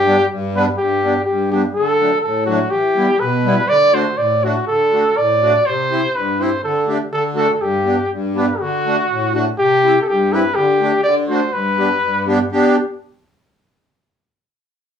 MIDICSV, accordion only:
0, 0, Header, 1, 2, 480
1, 0, Start_track
1, 0, Key_signature, 1, "major"
1, 0, Tempo, 487409
1, 765, Time_signature, 2, 2, 24, 8
1, 7478, Tempo, 494234
1, 14662, End_track
2, 0, Start_track
2, 0, Title_t, "Accordion"
2, 0, Program_c, 0, 21
2, 0, Note_on_c, 0, 43, 69
2, 57, Note_on_c, 0, 55, 63
2, 60, Note_on_c, 0, 59, 53
2, 62, Note_on_c, 0, 62, 70
2, 156, Note_off_c, 0, 55, 0
2, 158, Note_off_c, 0, 59, 0
2, 159, Note_off_c, 0, 62, 0
2, 166, Note_off_c, 0, 43, 0
2, 282, Note_on_c, 0, 43, 74
2, 539, Note_on_c, 0, 55, 71
2, 545, Note_on_c, 0, 59, 73
2, 548, Note_on_c, 0, 62, 85
2, 641, Note_off_c, 0, 55, 0
2, 643, Note_off_c, 0, 59, 0
2, 645, Note_off_c, 0, 43, 0
2, 645, Note_off_c, 0, 62, 0
2, 766, Note_on_c, 0, 43, 65
2, 1012, Note_on_c, 0, 55, 58
2, 1020, Note_on_c, 0, 59, 46
2, 1022, Note_on_c, 0, 62, 57
2, 1117, Note_off_c, 0, 55, 0
2, 1121, Note_off_c, 0, 59, 0
2, 1122, Note_off_c, 0, 62, 0
2, 1125, Note_off_c, 0, 43, 0
2, 1252, Note_on_c, 0, 43, 58
2, 1491, Note_on_c, 0, 59, 54
2, 1492, Note_on_c, 0, 55, 62
2, 1496, Note_on_c, 0, 62, 60
2, 1595, Note_off_c, 0, 55, 0
2, 1595, Note_off_c, 0, 59, 0
2, 1597, Note_off_c, 0, 62, 0
2, 1606, Note_off_c, 0, 43, 0
2, 1727, Note_on_c, 0, 50, 59
2, 1968, Note_on_c, 0, 54, 51
2, 1969, Note_on_c, 0, 62, 59
2, 1970, Note_on_c, 0, 57, 56
2, 2071, Note_off_c, 0, 54, 0
2, 2072, Note_off_c, 0, 62, 0
2, 2073, Note_off_c, 0, 57, 0
2, 2081, Note_off_c, 0, 50, 0
2, 2199, Note_on_c, 0, 45, 58
2, 2437, Note_on_c, 0, 54, 66
2, 2440, Note_on_c, 0, 57, 61
2, 2444, Note_on_c, 0, 62, 72
2, 2543, Note_off_c, 0, 54, 0
2, 2545, Note_off_c, 0, 57, 0
2, 2547, Note_off_c, 0, 62, 0
2, 2554, Note_off_c, 0, 45, 0
2, 2677, Note_on_c, 0, 52, 60
2, 2913, Note_on_c, 0, 55, 60
2, 2914, Note_on_c, 0, 59, 60
2, 2920, Note_on_c, 0, 64, 61
2, 3019, Note_off_c, 0, 55, 0
2, 3019, Note_off_c, 0, 59, 0
2, 3022, Note_off_c, 0, 64, 0
2, 3031, Note_off_c, 0, 52, 0
2, 3151, Note_on_c, 0, 47, 70
2, 3398, Note_on_c, 0, 55, 67
2, 3402, Note_on_c, 0, 59, 65
2, 3402, Note_on_c, 0, 64, 73
2, 3500, Note_off_c, 0, 55, 0
2, 3502, Note_off_c, 0, 59, 0
2, 3502, Note_off_c, 0, 64, 0
2, 3507, Note_off_c, 0, 47, 0
2, 3631, Note_on_c, 0, 50, 68
2, 3871, Note_on_c, 0, 57, 55
2, 3877, Note_on_c, 0, 62, 50
2, 3881, Note_on_c, 0, 66, 64
2, 3978, Note_off_c, 0, 57, 0
2, 3982, Note_off_c, 0, 62, 0
2, 3983, Note_off_c, 0, 66, 0
2, 3991, Note_off_c, 0, 50, 0
2, 4110, Note_on_c, 0, 45, 63
2, 4363, Note_on_c, 0, 57, 56
2, 4366, Note_on_c, 0, 62, 56
2, 4368, Note_on_c, 0, 66, 60
2, 4470, Note_off_c, 0, 57, 0
2, 4471, Note_off_c, 0, 62, 0
2, 4472, Note_off_c, 0, 66, 0
2, 4477, Note_off_c, 0, 45, 0
2, 4604, Note_on_c, 0, 50, 60
2, 4848, Note_on_c, 0, 57, 57
2, 4850, Note_on_c, 0, 62, 44
2, 4854, Note_on_c, 0, 66, 55
2, 4954, Note_off_c, 0, 57, 0
2, 4955, Note_off_c, 0, 62, 0
2, 4957, Note_off_c, 0, 66, 0
2, 4965, Note_off_c, 0, 50, 0
2, 5088, Note_on_c, 0, 45, 59
2, 5337, Note_on_c, 0, 57, 56
2, 5338, Note_on_c, 0, 62, 55
2, 5341, Note_on_c, 0, 66, 66
2, 5440, Note_off_c, 0, 57, 0
2, 5440, Note_off_c, 0, 62, 0
2, 5442, Note_off_c, 0, 66, 0
2, 5447, Note_off_c, 0, 45, 0
2, 5570, Note_on_c, 0, 48, 63
2, 5816, Note_on_c, 0, 64, 49
2, 5817, Note_on_c, 0, 60, 52
2, 5821, Note_on_c, 0, 67, 59
2, 5919, Note_off_c, 0, 64, 0
2, 5920, Note_off_c, 0, 60, 0
2, 5922, Note_off_c, 0, 67, 0
2, 5927, Note_off_c, 0, 48, 0
2, 6055, Note_on_c, 0, 43, 68
2, 6295, Note_on_c, 0, 60, 62
2, 6299, Note_on_c, 0, 64, 58
2, 6305, Note_on_c, 0, 67, 63
2, 6396, Note_off_c, 0, 60, 0
2, 6399, Note_off_c, 0, 64, 0
2, 6401, Note_off_c, 0, 67, 0
2, 6407, Note_off_c, 0, 43, 0
2, 6532, Note_on_c, 0, 50, 63
2, 6764, Note_on_c, 0, 57, 57
2, 6767, Note_on_c, 0, 62, 56
2, 6771, Note_on_c, 0, 67, 66
2, 6870, Note_off_c, 0, 57, 0
2, 6872, Note_off_c, 0, 62, 0
2, 6873, Note_off_c, 0, 67, 0
2, 6885, Note_off_c, 0, 50, 0
2, 6993, Note_on_c, 0, 50, 62
2, 7237, Note_on_c, 0, 57, 60
2, 7241, Note_on_c, 0, 66, 75
2, 7242, Note_on_c, 0, 62, 51
2, 7347, Note_off_c, 0, 57, 0
2, 7349, Note_off_c, 0, 62, 0
2, 7349, Note_off_c, 0, 66, 0
2, 7356, Note_off_c, 0, 50, 0
2, 7477, Note_on_c, 0, 43, 63
2, 7723, Note_on_c, 0, 59, 51
2, 7726, Note_on_c, 0, 62, 55
2, 7726, Note_on_c, 0, 67, 57
2, 7830, Note_off_c, 0, 59, 0
2, 7831, Note_off_c, 0, 62, 0
2, 7831, Note_off_c, 0, 67, 0
2, 7837, Note_off_c, 0, 43, 0
2, 7965, Note_on_c, 0, 43, 64
2, 8217, Note_on_c, 0, 59, 67
2, 8217, Note_on_c, 0, 62, 66
2, 8222, Note_on_c, 0, 67, 73
2, 8319, Note_off_c, 0, 59, 0
2, 8319, Note_off_c, 0, 62, 0
2, 8322, Note_off_c, 0, 67, 0
2, 8326, Note_off_c, 0, 43, 0
2, 8459, Note_on_c, 0, 50, 63
2, 8708, Note_on_c, 0, 57, 59
2, 8714, Note_on_c, 0, 62, 51
2, 8716, Note_on_c, 0, 66, 70
2, 8807, Note_off_c, 0, 57, 0
2, 8810, Note_off_c, 0, 62, 0
2, 8811, Note_off_c, 0, 66, 0
2, 8815, Note_off_c, 0, 50, 0
2, 8939, Note_on_c, 0, 45, 62
2, 9168, Note_on_c, 0, 57, 63
2, 9173, Note_on_c, 0, 62, 57
2, 9177, Note_on_c, 0, 66, 67
2, 9275, Note_off_c, 0, 57, 0
2, 9277, Note_off_c, 0, 62, 0
2, 9279, Note_off_c, 0, 66, 0
2, 9291, Note_off_c, 0, 45, 0
2, 9406, Note_on_c, 0, 48, 68
2, 9655, Note_on_c, 0, 60, 55
2, 9656, Note_on_c, 0, 64, 53
2, 9657, Note_on_c, 0, 67, 63
2, 9756, Note_off_c, 0, 60, 0
2, 9756, Note_off_c, 0, 64, 0
2, 9757, Note_off_c, 0, 67, 0
2, 9761, Note_off_c, 0, 48, 0
2, 9884, Note_on_c, 0, 43, 70
2, 10123, Note_on_c, 0, 60, 68
2, 10127, Note_on_c, 0, 67, 66
2, 10128, Note_on_c, 0, 64, 65
2, 10226, Note_off_c, 0, 60, 0
2, 10228, Note_off_c, 0, 64, 0
2, 10228, Note_off_c, 0, 67, 0
2, 10236, Note_off_c, 0, 43, 0
2, 10364, Note_on_c, 0, 50, 63
2, 10596, Note_on_c, 0, 57, 63
2, 10604, Note_on_c, 0, 62, 61
2, 10604, Note_on_c, 0, 67, 62
2, 10699, Note_off_c, 0, 57, 0
2, 10702, Note_off_c, 0, 67, 0
2, 10703, Note_off_c, 0, 62, 0
2, 10712, Note_off_c, 0, 50, 0
2, 10822, Note_on_c, 0, 50, 73
2, 11068, Note_on_c, 0, 57, 66
2, 11073, Note_on_c, 0, 62, 62
2, 11075, Note_on_c, 0, 66, 72
2, 11172, Note_off_c, 0, 57, 0
2, 11175, Note_off_c, 0, 62, 0
2, 11176, Note_off_c, 0, 66, 0
2, 11179, Note_off_c, 0, 50, 0
2, 11288, Note_on_c, 0, 43, 67
2, 11535, Note_on_c, 0, 59, 57
2, 11538, Note_on_c, 0, 62, 53
2, 11545, Note_on_c, 0, 67, 62
2, 11645, Note_off_c, 0, 59, 0
2, 11647, Note_off_c, 0, 62, 0
2, 11650, Note_off_c, 0, 67, 0
2, 11652, Note_off_c, 0, 43, 0
2, 11779, Note_on_c, 0, 43, 63
2, 12017, Note_on_c, 0, 59, 68
2, 12022, Note_on_c, 0, 62, 68
2, 12028, Note_on_c, 0, 67, 81
2, 12128, Note_off_c, 0, 59, 0
2, 12131, Note_off_c, 0, 62, 0
2, 12134, Note_off_c, 0, 67, 0
2, 12142, Note_off_c, 0, 43, 0
2, 12262, Note_on_c, 0, 67, 78
2, 12264, Note_on_c, 0, 59, 60
2, 12264, Note_on_c, 0, 62, 61
2, 12493, Note_off_c, 0, 67, 0
2, 12495, Note_off_c, 0, 59, 0
2, 12495, Note_off_c, 0, 62, 0
2, 14662, End_track
0, 0, End_of_file